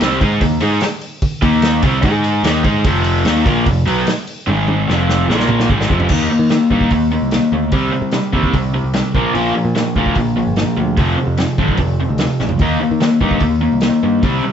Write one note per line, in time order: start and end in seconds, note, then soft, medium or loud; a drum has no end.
0.01 0.19 C2 medium
0.01 0.20 C3 medium
0.01 0.20 G3 medium
0.01 0.21 C4 loud
0.01 snare loud
0.01 open hi-hat medium
0.21 0.40 G#2 medium
0.21 0.41 G#3 medium
0.21 0.41 D#4 medium
0.21 0.41 G#4 loud
0.21 kick loud
0.21 open hi-hat medium
0.41 0.60 D#2 medium
0.41 0.57 D#3 medium
0.41 0.58 A#3 medium
0.41 kick medium
0.41 open hi-hat medium
0.61 0.81 G#2 medium
0.61 0.81 G#3 medium
0.61 0.81 D#4 loud
0.61 0.82 G#4 medium
0.61 open hi-hat medium
0.81 snare loud
0.81 open hi-hat medium
1.01 open hi-hat medium
1.22 kick loud
1.22 open hi-hat medium
1.42 1.80 D#2 medium
1.42 1.82 D#3 medium
1.42 1.83 A#3 loud
1.42 1.83 D#4 medium
1.42 kick loud
1.42 open hi-hat medium
1.62 snare loud
1.62 open hi-hat medium
1.83 2.02 C2 medium
1.83 2.03 C3 medium
1.83 2.04 G3 loud
1.83 2.04 C4 medium
1.83 kick loud
1.83 open hi-hat medium
2.03 2.41 G#2 medium
2.03 2.44 G#3 medium
2.03 2.44 D#4 loud
2.03 2.44 G#4 loud
2.03 kick loud
2.03 open hi-hat medium
2.24 open hi-hat medium
2.43 2.63 D#2 medium
2.43 2.64 D#3 loud
2.43 2.64 A#3 loud
2.43 2.63 D#4 loud
2.43 snare loud
2.43 open hi-hat medium
2.64 2.83 G#2 loud
2.64 2.84 G#3 medium
2.64 2.84 D#4 medium
2.64 2.84 G#4 loud
2.64 kick loud
2.64 open hi-hat medium
2.84 3.22 F1 medium
2.84 3.25 F2 medium
2.84 3.25 C3 loud
2.84 3.25 F3 loud
2.84 kick loud
2.84 open hi-hat medium
3.04 open hi-hat medium
3.25 3.44 D#2 medium
3.25 3.45 D#3 medium
3.25 3.45 A#3 medium
3.25 3.45 D#4 medium
3.25 snare loud
3.25 open hi-hat medium
3.46 3.65 A#1 medium
3.46 3.65 A#2 medium
3.46 3.66 F3 medium
3.46 3.66 A#3 loud
3.46 kick loud
3.46 open hi-hat medium
3.66 3.85 F1 medium
3.66 3.82 F2 medium
3.66 3.83 C3 medium
3.66 kick loud
3.66 open hi-hat medium
3.86 4.05 B1 medium
3.86 4.06 B2 medium
3.86 4.06 F#3 loud
3.86 4.06 B3 loud
3.86 open hi-hat medium
4.07 snare loud
4.07 open hi-hat medium
4.27 open hi-hat medium
4.47 4.85 G#1 loud
4.47 4.87 G#2 medium
4.47 4.87 D#3 medium
4.47 4.87 G#3 medium
4.47 high tom medium
4.68 high tom medium
4.89 5.26 F1 medium
4.89 5.28 F2 medium
4.89 5.29 C3 medium
4.89 5.28 F3 loud
4.89 snare medium
5.09 snare medium
5.28 5.66 A#1 medium
5.28 5.69 A#2 medium
5.28 5.69 F3 medium
5.28 5.69 A#3 loud
5.28 snare medium
5.40 snare medium
5.49 mid tom medium
5.60 snare medium
5.69 5.88 G#1 medium
5.69 5.89 G#2 medium
5.69 5.90 D#3 loud
5.69 5.90 G#3 loud
5.69 kick medium
5.81 snare medium
5.89 6.08 F1 medium
5.89 6.10 F2 medium
5.89 6.10 C3 medium
5.89 6.10 F3 loud
5.89 kick medium
6.00 floor tom medium
6.09 6.27 D#2 medium
6.09 6.28 D#3 medium
6.09 6.29 A#3 medium
6.09 6.30 D#4 medium
6.09 kick loud
6.09 crash medium
6.29 6.48 D#3 medium
6.29 6.49 A#3 medium
6.39 6.56 D#3 medium
6.49 6.69 D#3 medium
6.49 6.69 A#3 medium
6.49 snare loud
6.49 open hi-hat soft
6.70 6.87 G2 medium
6.70 6.90 D#3 medium
6.70 6.90 A#3 medium
6.70 6.90 D#4 medium
6.70 kick medium
6.81 kick medium
6.91 7.16 D#2 medium
6.91 7.10 D#3 medium
6.91 7.10 A#3 medium
6.91 kick medium
6.91 open hi-hat soft
7.11 7.30 D#3 medium
7.11 7.30 A#3 medium
7.22 7.39 C2 medium
7.31 7.50 D#3 medium
7.31 7.50 A#3 medium
7.31 snare loud
7.31 open hi-hat soft
7.52 7.73 D2 medium
7.52 7.71 D#3 medium
7.52 7.71 A#3 medium
7.72 7.89 C2 loud
7.72 7.91 C3 medium
7.72 7.92 G3 medium
7.72 7.92 C4 medium
7.72 kick loud
7.72 open hi-hat soft
7.92 8.11 C3 medium
7.92 8.11 G3 medium
8.02 8.19 C3 medium
8.11 8.31 C3 medium
8.11 8.32 G3 medium
8.11 snare medium
8.11 open hi-hat soft
8.33 8.50 D#2 medium
8.33 8.52 C3 medium
8.33 8.52 G3 medium
8.33 8.53 C4 medium
8.33 kick medium
8.43 kick medium
8.53 8.79 C2 loud
8.53 8.72 C3 medium
8.53 8.73 G3 medium
8.53 kick medium
8.53 open hi-hat medium
8.74 8.92 C3 medium
8.74 8.93 G3 medium
8.84 9.01 C2 medium
8.94 9.13 C3 medium
8.94 9.13 G3 medium
8.94 snare loud
8.94 open hi-hat soft
9.14 9.23 A#1 medium
9.14 9.33 A#2 medium
9.14 9.33 F3 medium
9.14 9.34 A#3 medium
9.14 kick medium
9.34 9.52 A#1 medium
9.34 9.54 A#2 medium
9.34 9.54 F3 medium
9.34 9.54 A#3 medium
9.34 open hi-hat soft
9.55 9.74 A#2 medium
9.55 9.74 F3 medium
9.65 9.82 A#2 medium
9.75 9.94 A#2 medium
9.75 9.94 F3 medium
9.75 snare loud
9.75 open hi-hat soft
9.95 10.13 D2 medium
9.95 10.15 A#2 medium
9.95 10.16 F3 medium
9.95 10.16 A#3 medium
9.95 kick medium
10.06 kick medium
10.15 10.41 A#1 medium
10.15 10.35 A#2 medium
10.15 10.35 F3 medium
10.15 kick medium
10.15 open hi-hat soft
10.37 10.55 A#2 medium
10.37 10.56 F3 medium
10.47 10.64 G1 medium
10.56 10.76 A#2 medium
10.56 10.76 F3 medium
10.56 snare medium
10.56 open hi-hat soft
10.77 10.99 D2 medium
10.77 10.96 A#2 medium
10.77 10.96 F3 medium
10.97 11.14 F1 medium
10.97 11.17 F2 medium
10.97 11.17 C3 medium
10.97 11.18 F3 medium
10.97 kick loud
10.97 open hi-hat medium
11.18 11.36 F2 medium
11.18 11.37 C3 medium
11.27 11.44 F2 medium
11.38 11.57 F2 medium
11.38 11.57 C3 medium
11.38 snare medium
11.38 open hi-hat medium
11.58 11.75 G#1 medium
11.58 11.78 F2 medium
11.58 11.78 C3 medium
11.58 11.78 F3 medium
11.58 kick medium
11.68 kick medium
11.77 12.04 F1 medium
11.77 11.98 F2 medium
11.77 11.98 C3 medium
11.77 kick medium
11.77 open hi-hat soft
12.00 12.18 F2 medium
12.00 12.18 C3 medium
12.09 12.26 D2 medium
12.18 12.38 F2 medium
12.18 12.38 C3 medium
12.18 snare loud
12.18 open hi-hat soft
12.40 12.60 A#1 medium
12.40 12.59 F2 medium
12.40 12.59 C3 medium
12.40 snare soft
12.49 floor tom medium
12.59 12.77 D#2 loud
12.59 12.79 D#3 medium
12.59 12.80 A#3 medium
12.59 12.80 D#4 medium
12.59 kick loud
12.59 open hi-hat soft
12.80 12.99 D#3 medium
12.80 12.99 A#3 medium
12.91 13.08 D#3 medium
13.01 13.19 D#3 medium
13.01 13.19 A#3 medium
13.01 snare loud
13.01 open hi-hat soft
13.21 13.38 G2 medium
13.21 13.40 D#3 medium
13.21 13.40 A#3 medium
13.21 13.41 D#4 medium
13.21 kick medium
13.31 kick medium
13.40 13.67 D#2 medium
13.40 13.60 D#3 medium
13.40 13.60 A#3 medium
13.40 kick medium
13.40 open hi-hat soft
13.61 13.80 D#3 medium
13.61 13.80 A#3 medium
13.73 13.89 C2 medium
13.81 14.01 D#3 medium
13.81 14.01 A#3 medium
13.81 snare medium
13.81 open hi-hat soft
14.03 14.25 G2 medium
14.03 14.21 D#3 medium
14.03 14.21 A#3 medium
14.23 14.40 C2 medium
14.23 14.43 C3 medium
14.23 14.43 G3 medium
14.23 14.43 C4 medium
14.23 kick loud
14.23 open hi-hat soft
14.44 14.52 C3 medium
14.44 14.52 G3 medium